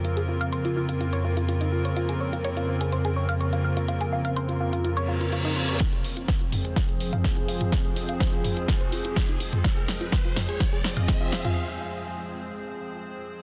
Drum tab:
HH |xx-xxx-xxx-xxx-x|xx-xxx-xxx-xxx-x|xx-xxx-xxx-xxx-x|xxoxxxoxxxoxxxox|
SD |----------------|----------------|----------------|o---o---o---o---|
T2 |----------------|----------------|----------------|------o----o---o|
BD |----------------|----------------|----------------|o---o---o---o---|

HH |xxoxxxoxxxoxxxox|xxoxxxoxxxoxxxox|----------------|
SD |o---o---o---o---|o-o-o-o-o-o-o-o-|----------------|
T2 |------o--------o|------o----o---o|----------------|
BD |o---o---o---o---|o---o---o---o---|----------------|